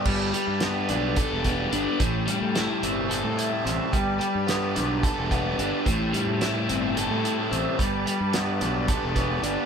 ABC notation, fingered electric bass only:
X:1
M:7/8
L:1/16
Q:1/4=109
K:Gmix
V:1 name="Fingered electric bass" clef=bass
G,,,2 z G,,3 B,,,2 z E,,,3 G,,, z | A,,,2 z A,,2 z G,,,3 A,,2 z A,,, z | G,,,2 z G,,3 B,,,2 z E,,,3 G,,, z | A,,,2 z A,,2 z G,,,3 A,,2 z A,,, z |
G,,,2 z G,,3 B,,,2 z E,,,3 G,,, z |]